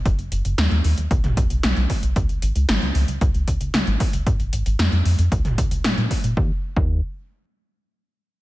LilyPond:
<<
  \new Staff \with { instrumentName = "Analog synth bass" } { \clef bass \time 4/4 \key des \mixolydian \tempo 4 = 114 fis,,16 fis,,16 fis,,16 fis,,16 dis,16 dis,16 dis,16 dis,16 b,,16 b,,16 b,,16 b,,16 b,,16 b,,16 r16 b,,16 | des,16 des,16 aes,,16 des,16 aes,,16 des,16 des,16 des,16 des,16 des,16 des,16 des,16 des,16 aes,,16 r16 des,16 | aes,,16 aes,,16 aes,,16 aes,,16 f,16 f,16 f,16 f,16 des,16 des,16 des,16 des,16 bes,16 bes,16 r16 bes,16 | ees,16 r8 ees,8 r2 r8. | }
  \new DrumStaff \with { instrumentName = "Drums" } \drummode { \time 4/4 <hh bd>16 hh16 hh16 hh16 <hh sn>16 hh16 hho16 hh16 <hh bd>16 <hh toml>16 <hh bd>16 hh16 <hh sn>16 hh16 <hho bd>16 hh16 | <hh bd>16 hh16 hh16 hh16 <hh sn>16 hh16 hho16 hh16 <hh bd>16 hh16 <hh bd>16 hh16 <hh sn>16 hh16 <hho bd>16 hh16 | <hh bd>16 hh16 hh16 hh16 <hh sn>16 hh16 hho16 hh16 <hh bd>16 <hh toml>16 <hh bd>16 hh16 <hh sn>16 hh16 <hho bd>16 hh16 | bd8. bd16 r4 r4 r4 | }
>>